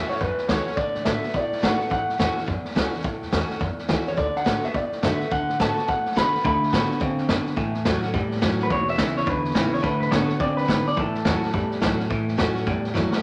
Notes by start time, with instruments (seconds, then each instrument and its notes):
Already playing: steel-string acoustic guitar A2
0.09 steel-string acoustic guitar C#4 F#4, clean electric guitar C#5, muted upright bass stroke, snare
0.16 snare
0.20 steel-string acoustic guitar E2, upright bass F#2, clean electric guitar B4, kick, snare
0.38 muted upright bass stroke, snare
0.48 upright bass C#2, steel-string acoustic guitar E3 A3 C#4 F#4, clean electric guitar C#5, kick, snare, hi-hat pedal
0.66 steel-string acoustic guitar C#4 F#4, muted upright bass stroke, snare
0.71 snare
0.76 upright bass D2, steel-string acoustic guitar D3, clean electric guitar D5, kick, snare
0.95 upright bass A2, snare
1.05 upright bass A2, steel-string acoustic guitar D3 A3 B3 F#4, clean electric guitar E5, kick, snare, hi-hat pedal
1.23 steel-string acoustic guitar B3 F#4, snare
1.28 snare
1.34 steel-string acoustic guitar A2, upright bass B2, clean electric guitar D5, kick, snare
1.52 muted upright bass stroke, snare
1.58 steel-string acoustic guitar D3, snare
1.62 upright bass G#1, steel-string acoustic guitar A3 B3 F#4, clean electric guitar F#5, kick, snare, hi-hat pedal
1.79 steel-string acoustic guitar B3 F#4, muted upright bass stroke, snare
1.90 upright bass A1, steel-string acoustic guitar A2, clean electric guitar F#5, kick, snare
2.09 muted upright bass stroke, snare
2.18 upright bass E2, steel-string acoustic guitar E3 A3 C#4 F#4, kick, snare, hi-hat pedal
2.35 steel-string acoustic guitar C#4 F#4, muted upright bass stroke, snare
2.46 steel-string acoustic guitar E2, upright bass F#2, kick, snare
2.65 muted upright bass stroke, snare
2.71 steel-string acoustic guitar E3, snare
2.76 upright bass C#2, steel-string acoustic guitar A3 C#4 F#4, kick, snare, hi-hat pedal
2.91 steel-string acoustic guitar C#4 F#4, snare
2.99 steel-string acoustic guitar A2, snare
3.04 upright bass A1, kick, snare
3.22 upright bass E2, snare
3.31 upright bass E2, steel-string acoustic guitar E3 A3 C#4 F#4, kick, snare, hi-hat pedal
3.49 steel-string acoustic guitar C#4 F#4, muted upright bass stroke, snare
3.60 steel-string acoustic guitar E2, upright bass F#2, kick, snare
3.78 muted upright bass stroke, snare
3.88 upright bass C#2, steel-string acoustic guitar E3 A3 C#4 F#4, kick, snare, hi-hat pedal
4.06 steel-string acoustic guitar C#4 F#4, clean electric guitar C#5, muted upright bass stroke, snare
4.17 upright bass D2, steel-string acoustic guitar D3, clean electric guitar D5, kick, snare
4.36 clean electric guitar F#5, snare
4.44 upright bass A2, steel-string acoustic guitar D3 A3 B3 F#4, kick, snare, hi-hat pedal
4.63 steel-string acoustic guitar B3 F#4, clean electric guitar E5, muted upright bass stroke, snare
4.74 steel-string acoustic guitar A2, upright bass B2, clean electric guitar D5, kick, snare
4.91 muted upright bass stroke, snare
5.02 upright bass F#2, steel-string acoustic guitar D3 A3 B3 F#4, clean electric guitar E5, kick, snare, hi-hat pedal
5.20 steel-string acoustic guitar B3 F#4, muted upright bass stroke, snare
5.31 upright bass D2, steel-string acoustic guitar D3, clean electric guitar F#5, kick, snare
5.48 upright bass A2, snare
5.59 upright bass A2, steel-string acoustic guitar D3 A3 B3 F#4, clean electric guitar A5, kick, snare, hi-hat pedal
5.77 steel-string acoustic guitar B3 F#4, muted upright bass stroke, snare
5.88 steel-string acoustic guitar A2, upright bass B2, clean electric guitar F#5, kick, snare
6.06 muted upright bass stroke, snare
6.12 steel-string acoustic guitar D3 A3, snare
6.16 upright bass B2, steel-string acoustic guitar B3 F#4, clean electric guitar B5, kick, snare, hi-hat pedal
6.33 steel-string acoustic guitar B3 F#4, muted upright bass stroke, snare
6.40 steel-string acoustic guitar D3, snare
6.45 upright bass D2, clean electric guitar D3 A3 B5, kick, snare
6.63 muted upright bass stroke, snare
6.69 upright bass A2, steel-string acoustic guitar D3, snare
6.73 clean electric guitar D3 B3, steel-string acoustic guitar A3 B3 F#4, kick, snare, hi-hat pedal
6.89 steel-string acoustic guitar B3 F#4, muted upright bass stroke, snare
7.00 upright bass B2, steel-string acoustic guitar C#3, clean electric guitar D3 C4, kick, snare
7.18 muted upright bass stroke, snare
7.29 upright bass F#2, steel-string acoustic guitar B2, clean electric guitar D3 B3, kick, snare, hi-hat pedal
7.47 muted upright bass stroke, snare
7.56 steel-string acoustic guitar A2, clean electric guitar A2 E3, kick, snare
7.74 upright bass E2, snare
7.85 upright bass E2, clean electric guitar A2 F#3, steel-string acoustic guitar E3 A3 C#4 F#4, kick, snare, hi-hat pedal
8.02 steel-string acoustic guitar C#4 F#4, muted upright bass stroke, snare
8.13 steel-string acoustic guitar E2, upright bass F#2, clean electric guitar A2 G3, kick, snare
8.31 snare
8.37 snare
8.41 upright bass F#2, clean electric guitar A2 F#3, steel-string acoustic guitar E3 A3 C#4 F#4, kick, snare, hi-hat pedal
8.59 steel-string acoustic guitar C#4 F#4, muted upright bass stroke, snare
8.63 clean electric guitar B4
8.70 upright bass E1, clean electric guitar E2 B2 C#5, steel-string acoustic guitar E2, kick, snare
8.88 clean electric guitar E5, muted upright bass stroke, snare
8.93 snare
8.98 upright bass B1, clean electric guitar E2 C#3, steel-string acoustic guitar E3 G#3 C#4 E4, kick, snare, hi-hat pedal
9.16 steel-string acoustic guitar C#4 E4, clean electric guitar C#5, muted upright bass stroke, snare
9.26 upright bass C#2, clean electric guitar E2 D3 B4, steel-string acoustic guitar B2, kick, snare
9.44 muted upright bass stroke, snare
9.50 steel-string acoustic guitar E3, snare
9.55 upright bass G#1, clean electric guitar E2 C#3, steel-string acoustic guitar G#3 C#4 E4, kick, snare, hi-hat pedal
9.72 steel-string acoustic guitar C#4 E4, clean electric guitar C#5, muted upright bass stroke, snare
9.79 clean electric guitar D3 A3, snare
9.83 upright bass D2, steel-string acoustic guitar D3, clean electric guitar B4, kick, snare
10.00 upright bass A2, clean electric guitar B4, snare
10.11 upright bass A2, clean electric guitar D3 B3 C#5, steel-string acoustic guitar D3 A3 B3 F#4, kick, snare, hi-hat pedal
10.28 steel-string acoustic guitar B3 F#4, muted upright bass stroke, snare
10.40 upright bass B2, steel-string acoustic guitar C#3, clean electric guitar D3 C4 D5, kick, snare
10.57 clean electric guitar B4, muted upright bass stroke, snare
10.64 snare
10.68 upright bass G#1, steel-string acoustic guitar B2, clean electric guitar D3 B3, kick, snare, hi-hat pedal
10.86 clean electric guitar D5, muted upright bass stroke, snare
10.92 snare
10.96 upright bass A1, clean electric guitar A2 E3 A4, steel-string acoustic guitar A2, kick, snare
11.15 snare
11.25 upright bass E2, clean electric guitar A2 F#3, steel-string acoustic guitar E3 A3 C#4 F#4, kick, snare, hi-hat pedal
11.42 steel-string acoustic guitar C#4 F#4, muted upright bass stroke, snare
11.49 snare
11.53 steel-string acoustic guitar E2, upright bass F#2, clean electric guitar A2 G3, kick, snare
11.71 snare
11.80 upright bass C#2, clean electric guitar A2 F#3, steel-string acoustic guitar E3 A3 C#4 F#4, kick, snare, hi-hat pedal
11.99 steel-string acoustic guitar C#4 F#4, snare
12.10 upright bass A1, steel-string acoustic guitar A2, clean electric guitar A2 E3, kick, snare
12.28 upright bass E2, snare
12.37 upright bass E2, clean electric guitar A2 F#3, steel-string acoustic guitar E3 A3 C#4 F#4, kick, snare, hi-hat pedal
12.55 steel-string acoustic guitar C#4 F#4, muted upright bass stroke, snare
12.66 steel-string acoustic guitar E2, upright bass F#2, clean electric guitar A2 G3, kick, snare
12.84 muted upright bass stroke, snare
12.94 upright bass F#2, clean electric guitar A2 F#3, steel-string acoustic guitar E3 A3 C#4 F#4, kick, snare, hi-hat pedal
13.10 steel-string acoustic guitar C#4 F#4, muted upright bass stroke, snare